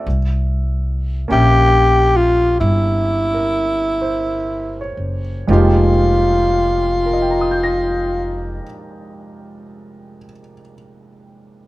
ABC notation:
X:1
M:4/4
L:1/16
Q:"Swing" 1/4=39
K:Fm
V:1 name="Grand piano"
=e2 z8 B2 c2 d2- | d z3 [Begbe'g'b']12 |]
V:2 name="Grand piano"
z4 [B,DG=e]12 | [F,,F,A,B,EG]16 |]
V:3 name="Tenor saxophone"
z4 G2 F2 =E6 z2 | F16 |]
V:4 name="Upright bass" clef=bass
C,,4 B,,,4 G,,,6 _G,,,2 | F,,,16 |]